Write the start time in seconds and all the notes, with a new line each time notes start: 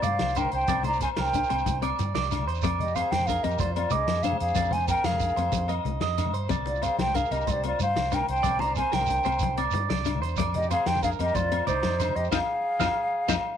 Already playing: C4
0.02 G2 C5 D5 F5, closed hi-hat, low conga, shekere
0.19 C2, snare, closed hi-hat, high conga, low conga
0.29 shekere
0.35 D4 A#4 C5 G5, closed hi-hat, low agogo, shekere
0.45 low conga
0.51 C2 C5 G5, closed hi-hat
0.60 shekere
0.67 C2 C4 D5, kick, closed hi-hat, high conga, low agogo, shekere
0.77 low conga
0.83 C5 D5 A#5, closed hi-hat, low conga
0.93 shekere
1.00 C4 C5 G#5, kick, closed hi-hat, low conga, low agogo, shekere
1.09 low conga
1.17 C2 A#4 C5 G5, snare, closed hi-hat, high conga
1.26 shekere
1.33 D4, kick, closed hi-hat, shekere
1.43 shekere
1.50 C2 C4 C5, closed hi-hat, low conga, low agogo, shekere
1.58 shekere
1.66 C2, kick, closed hi-hat, high conga, low conga, shekere
1.82 C4 D5, closed hi-hat, low conga, low agogo
1.91 low conga
1.99 G2, closed hi-hat, low conga, shekere
2.14 C2 D5, snare, closed hi-hat, high conga, low conga
2.23 shekere
2.31 D4, snare, closed hi-hat, low agogo, shekere
2.39 low conga
2.48 E2 C5, closed hi-hat
2.54 shekere
2.62 F2 C4 D5, kick, closed hi-hat, high conga, low agogo, shekere
2.79 G4 D#5, closed hi-hat, low conga
2.88 shekere
2.95 C4 G#4 C5 F5, closed hi-hat, low agogo, shekere
3.04 low conga
3.11 F2 C5 G5, snare, closed hi-hat, high conga
3.19 low conga, shekere
3.26 D4 G#4 A#4 F5, kick, closed hi-hat, shekere
3.43 F2 C4 G4 D#5, closed hi-hat, low conga, low agogo, shekere
3.51 shekere
3.59 F2 F4 C5 D5, kick, closed hi-hat, high conga, low conga, shekere
3.75 C4 F4 D5, closed hi-hat, low agogo
3.90 C2 G#4 D#5 D6, closed hi-hat, low conga, shekere
4.08 F2, snare, closed hi-hat, high conga, low conga
4.15 shekere
4.23 D4 G#4 C5 F5, closed hi-hat, low agogo, shekere
4.32 low conga
4.40 F2 G#4 F5, closed hi-hat
4.48 shekere
4.55 F2 C4 D5, kick, closed hi-hat, high conga, low agogo, shekere
4.63 low conga
4.71 C5 G#5, closed hi-hat, low conga
4.81 shekere
4.88 C4 A#4 G5, kick, closed hi-hat, low agogo, shekere
4.97 shekere
5.04 F2 G#4 A#4 F5, snare, closed hi-hat, high conga, shekere
5.12 low conga, shekere
5.20 D4, kick, closed hi-hat, shekere
5.29 low conga, shekere
5.36 F2 C4 C5, closed hi-hat, low agogo
5.45 low conga
5.52 F2, kick, closed hi-hat, high conga, low conga, shekere
5.68 C4 D#5, closed hi-hat, low conga, low agogo, shekere
5.85 C2, closed hi-hat, low conga
6.00 F2 D#5, snare, closed hi-hat, high conga
6.18 D4, snare, closed hi-hat, low agogo, shekere
6.25 low conga
6.33 G2 C5, closed hi-hat
6.49 C2 C4 D5, kick, closed hi-hat, high conga, low agogo, shekere
6.58 low conga
6.66 F4 D5, closed hi-hat, low conga
6.75 shekere
6.82 C4 G#4 C5 F5, closed hi-hat, low agogo, shekere
6.91 low conga
6.98 C2 C5 G5, snare, closed hi-hat, high conga
7.06 low conga, shekere
7.14 D4 G#4 A#4 F5, kick, closed hi-hat, shekere
7.25 shekere
7.31 C2 C4 G4 D#5, closed hi-hat, low conga, low agogo, shekere
7.41 shekere
7.47 C2 G4 C5 D5, kick, closed hi-hat, high conga, low conga, shekere
7.63 C4 F4 D5, closed hi-hat, low agogo
7.72 low conga
7.80 G2 C5 F5, closed hi-hat, low conga, shekere
7.96 C2, snare, closed hi-hat, high conga, low conga
8.04 shekere
8.12 D4 A#4 G5, muted clean electric guitar stroke, snare, closed hi-hat, low agogo, shekere
8.20 low conga
8.28 C2 C5 G5, closed hi-hat
8.36 shekere
8.43 C2 C4 D5, kick, closed hi-hat, high conga, low agogo, shekere
8.52 low conga
8.59 C5 D5 A#5, closed hi-hat, low conga
8.67 shekere
8.76 C4 C5 G#5, kick, closed hi-hat, low conga, low agogo, shekere
8.85 low conga
8.92 C2 A#4 C5 G5, snare, closed hi-hat, high conga
9.00 low conga, shekere
9.06 D4, kick, closed hi-hat, shekere
9.16 shekere
9.23 C2 C4 C5, closed hi-hat, low agogo, shekere
9.31 shekere
9.39 C2, kick, closed hi-hat, high conga, low conga, shekere
9.57 C4 D5, closed hi-hat, low agogo
9.67 low conga, shekere
9.73 G2, closed hi-hat, low conga
9.90 C2 D5, snare, closed hi-hat, high conga, low conga
9.96 shekere
10.05 D4, snare, closed hi-hat, low agogo, shekere
10.15 low conga
10.21 E2 C5, closed hi-hat
10.29 shekere
10.36 F2 D5, muted steel-string acoustic guitar stroke, kick, closed hi-hat, high conga, low agogo, shekere
10.48 low conga
10.54 G4 D#5, closed hi-hat, low conga
10.62 shekere
10.71 C4 G#4 C5 F5, closed hi-hat, low conga, low agogo, shekere
10.79 low conga
10.86 F2 C5 G5, snare, closed hi-hat, high conga
10.95 low conga, shekere
11.03 D4 G#4 A#4 F5, kick, closed hi-hat, shekere
11.12 shekere
11.19 F2 C4 G4 D#5, closed hi-hat, low conga, low agogo, shekere
11.28 shekere
11.35 F2 F4 C5 D5, kick, closed hi-hat, high conga, low conga, shekere
11.51 C4, closed hi-hat, low agogo
11.61 low conga
11.67 C2 D#4 C5 D5, closed hi-hat, low conga, shekere
11.83 F2, snare, closed hi-hat, high conga, low conga
11.92 shekere
12.00 D4 C5, snare, closed hi-hat, low agogo, shekere
12.09 low conga
12.16 F2 G4 D#5, closed hi-hat
12.24 shekere
12.31 F2 C4 D#4 F4 G#4 C5 D#5 F5, kick, snare, high conga, low agogo, shekere
12.79 F2 C4 D#4 F4 C5 D#5 F5, kick, snare, high conga, low agogo, shekere
13.28 F2 C4 D#4 F4 C5 D#5 F5, kick, snare, high conga, low agogo, shekere